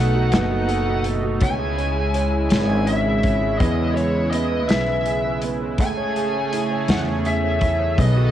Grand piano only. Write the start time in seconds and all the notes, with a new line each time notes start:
Already playing: B3 F#4 A4
0.15 F#4
0.33 B3
0.51 F#4
0.69 A4
0.87 F#4
1.06 A4
1.23 F#4
1.41 C#4
1.59 G#4
1.77 C#5
1.96 G#4
2.15 C#5
2.33 G#4
2.50 C#4
2.69 G#4
2.88 C#5
3.05 G#4
3.24 C#5
3.42 G#4
3.61 E3
3.79 B4
3.97 G#4
4.15 B4
4.33 B3
4.52 B4
4.69 B3
4.88 B4
5.06 G#4
5.24 B4
5.44 B3
5.61 B4
5.80 A3
5.97 C#5
6.17 G#4
6.34 C#5
6.53 E4
6.71 C#5
6.89 E4
7.07 C#5
7.26 G#4
7.43 C#5
7.62 E4
7.79 C#5
7.98 B3
8.16 F#4